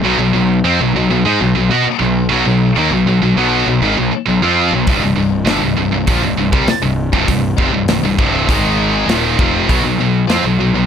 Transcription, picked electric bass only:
0.02 B1
0.18 B1
0.34 B1
0.64 F2
0.79 B1
0.94 B1
1.10 B1
1.25 G#2
1.41 B1
1.55 B1
1.69 B2
1.87 muted picked electric bass stroke
2.00 B1
2.31 B1
2.46 B1
2.77 D#2
2.91 B1
3.06 B1
3.23 B1
3.36 B1
3.66 B1
3.81 G#1
3.97 B1
4.13 muted picked electric bass stroke
4.28 B1
4.42 F2
4.72 B1
4.87 C1
5.02 C1
5.17 C1
5.47 G1
5.63 C1
5.77 C1
5.93 C1
6.07 A#1
6.22 C1
6.38 C1
6.52 C2
6.68 muted picked electric bass stroke
6.83 C1
7.13 C1
7.27 C1
7.58 F1
7.71 C1
7.87 C1
8.03 C1
8.18 C1
8.48 G#1
9.07 D#1
9.39 F1
9.69 B1
9.84 B1
9.99 B1
10.30 F2
10.44 B1
10.59 B1
10.73 B1

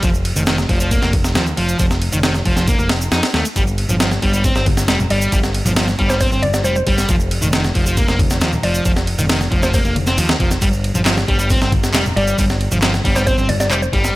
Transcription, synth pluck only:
5.11 D5
6.10 C5
6.21 C5
6.42 D5
6.54 D5
6.64 C5
6.76 C5
8.63 D5
9.63 C5
9.74 C5
12.16 D5
13.16 C5
13.27 C5
13.49 D5
13.60 D5
13.71 C5
13.82 C5

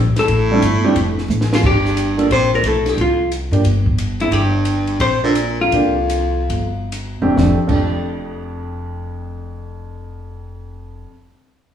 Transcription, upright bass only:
Already playing: A#1
0.15 muted upright bass stroke
0.28 A1
0.62 G1
0.83 muted upright bass stroke
0.96 F1
1.28 A1
1.63 G1
2.30 A#1
2.63 B1
2.97 C2
3.51 G2
3.64 G1
4.31 G1
5.00 A#1
5.71 C2
6.49 G1
7.22 E1
7.37 F1
7.69 F1

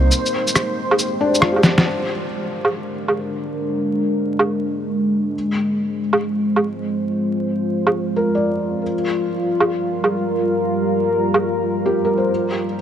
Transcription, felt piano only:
Already playing: C4
1.21 D4
1.40 F4
1.52 G4
1.86 C5
8.16 A#4
8.35 D5
11.86 G4
12.05 A#4
12.17 C5

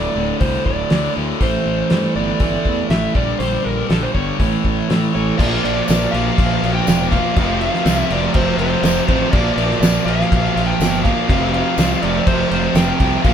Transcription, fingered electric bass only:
0.15 D1
0.41 C2
0.66 D1
0.91 D2
1.17 D2
1.40 A1
1.66 A1
1.91 G2
2.15 G1
2.40 G1
2.66 E2
2.89 A1
3.15 A#1
3.40 A#1
3.66 A#1
3.90 A#1
4.15 G1
4.39 A1
4.64 A1
4.90 A2
5.15 A1
5.39 A#1
5.64 A#1
5.89 A#1
6.13 A#1
6.38 A#1
6.63 A#1
6.88 E1
7.37 F1
7.85 C2
8.10 F1
8.35 F1
8.57 F1
8.82 F1
9.08 A1
9.33 A#1
9.57 A#1
9.80 A#1
10.06 A#1
10.31 A#1
10.56 A#1
10.80 G1
11.29 F1
11.78 C2
12.03 F1
12.27 F1
12.51 F1
12.74 F1
13.00 C2
13.24 A#1

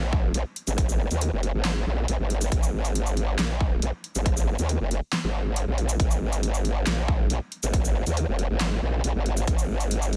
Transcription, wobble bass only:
Already playing: A#1
0.34 A#1
0.67 G#1
1.11 D#2
1.33 F#1
1.54 G#1
1.87 A#1
2.08 A#1
2.19 G#1
2.52 G#1
3.39 A#1
3.82 A#1
4.15 G#1
4.59 D#2
4.80 F#1
5.24 G#1
5.67 A#1
6.00 G#1
6.87 A#1
7.30 A#1
7.63 G#1
8.07 D#2
8.28 F#1
8.50 G#1
8.82 A#1
9.04 A#1
9.15 G#1
9.47 G#1

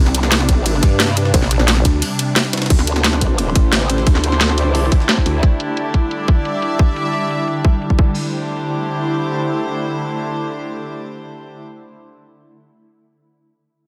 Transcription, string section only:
2.70 D4
2.92 G4 C5
5.82 D5
6.25 E5
7.99 D4
8.04 G4
8.26 C5

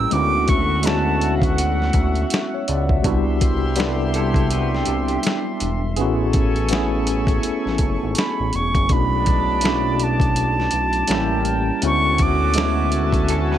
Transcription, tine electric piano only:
Already playing: G3 A#3 C#4 E4 G4
0.10 G#3 B3 C#4 E4
0.15 F4
0.21 F#4
0.84 G#3 B3 C#4 E4
0.88 F#4
2.54 C#5
2.68 D5
2.90 E5
3.02 G3 B3 D4 E4
3.07 F#4
3.76 G3 B3 D4 E4
3.80 A4
5.96 B3 C#4 E4 G#4
6.01 F#4
6.69 A3 B3 C#4 E4
6.74 G#4
8.89 A3 C#4 D4 E4
8.93 F#4
9.62 A3 C#4 D4 E4
9.67 F#4
11.08 G3 A#3 C#4 E4
11.12 G4
11.82 G#3 B3 C#4 E4
11.86 F#4
12.55 G#3 B3 C#4 E4
12.59 F#4

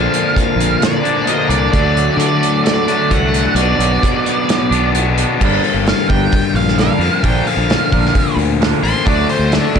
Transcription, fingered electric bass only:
0.56 A#1
1.49 C2
1.73 D2
2.17 D3
3.11 C2
3.55 B1
3.79 B1
4.71 B1
5.41 G1
5.74 G1
6.09 G1
6.54 A#1
6.99 F2
7.23 A#1
7.57 A#1
7.91 A#1
8.36 D2
8.83 A1
9.07 D2
9.39 D2
9.75 D2

